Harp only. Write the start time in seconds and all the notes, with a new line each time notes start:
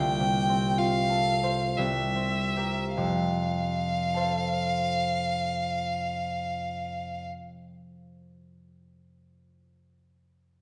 Already playing: C2 F4 F5
0.20 C3
0.49 C4
0.78 F4
1.10 A4
1.43 C5
1.78 C2
2.16 C4
2.57 G4 A#4
2.97 F2 C3
4.14 A4 C5 F5